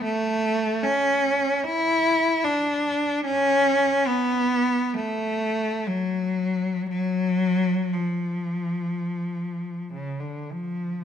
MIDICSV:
0, 0, Header, 1, 2, 480
1, 0, Start_track
1, 0, Key_signature, 3, "minor"
1, 0, Tempo, 800000
1, 33, Time_signature, 4, 2, 24, 8
1, 1473, Tempo, 818554
1, 2433, Tempo, 858369
1, 2913, Tempo, 934579
1, 3393, Tempo, 1011804
1, 5313, Tempo, 1176471
1, 5765, End_track
2, 0, Start_track
2, 0, Title_t, "Cello"
2, 0, Program_c, 0, 42
2, 22, Note_on_c, 0, 57, 123
2, 499, Note_on_c, 0, 61, 115
2, 500, Note_off_c, 0, 57, 0
2, 979, Note_off_c, 0, 61, 0
2, 982, Note_on_c, 0, 64, 127
2, 1466, Note_on_c, 0, 62, 106
2, 1470, Note_off_c, 0, 64, 0
2, 1940, Note_on_c, 0, 61, 127
2, 1952, Note_off_c, 0, 62, 0
2, 2416, Note_off_c, 0, 61, 0
2, 2421, Note_on_c, 0, 59, 121
2, 2907, Note_on_c, 0, 57, 113
2, 2908, Note_off_c, 0, 59, 0
2, 3388, Note_on_c, 0, 54, 104
2, 3390, Note_off_c, 0, 57, 0
2, 3866, Note_off_c, 0, 54, 0
2, 3871, Note_on_c, 0, 54, 123
2, 4351, Note_off_c, 0, 54, 0
2, 4361, Note_on_c, 0, 53, 92
2, 5312, Note_off_c, 0, 53, 0
2, 5312, Note_on_c, 0, 49, 92
2, 5414, Note_off_c, 0, 49, 0
2, 5421, Note_on_c, 0, 50, 81
2, 5551, Note_off_c, 0, 50, 0
2, 5551, Note_on_c, 0, 53, 84
2, 5765, Note_off_c, 0, 53, 0
2, 5765, End_track
0, 0, End_of_file